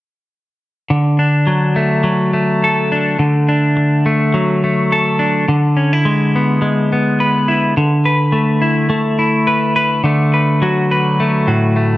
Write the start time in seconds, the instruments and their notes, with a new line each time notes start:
0.90 clean electric guitar D3
1.19 clean electric guitar D4
1.47 clean electric guitar F#3
1.76 clean electric guitar A3
2.04 clean electric guitar F#3
2.33 clean electric guitar A3
2.64 clean electric guitar A4
2.92 clean electric guitar D4
3.19 clean electric guitar D3
3.49 clean electric guitar D4
3.77 muted clean electric guitar stroke
4.06 clean electric guitar A3
4.34 clean electric guitar F#3
4.64 clean electric guitar A3
4.92 clean electric guitar A4
5.19 clean electric guitar D4
5.48 clean electric guitar D3
5.77 clean electric guitar C#4
5.93 clean electric guitar E4
6.05 clean electric guitar G#3
6.36 clean electric guitar B3
6.62 clean electric guitar G#3
6.92 clean electric guitar B3
7.20 clean electric guitar B4
7.48 clean electric guitar E4
7.77 clean electric guitar D3
8.05 clean electric guitar B4
8.32 clean electric guitar A3
8.62 clean electric guitar E4
8.90 clean electric guitar A3
9.19 clean electric guitar E4
9.47 clean electric guitar B4
9.76 clean electric guitar B4
10.04 clean electric guitar D3 A3
10.34 clean electric guitar B4
10.62 clean electric guitar F#3 F#4
10.91 clean electric guitar B4
11.20 clean electric guitar A3
11.47 clean electric guitar A2 F#4
11.76 clean electric guitar A3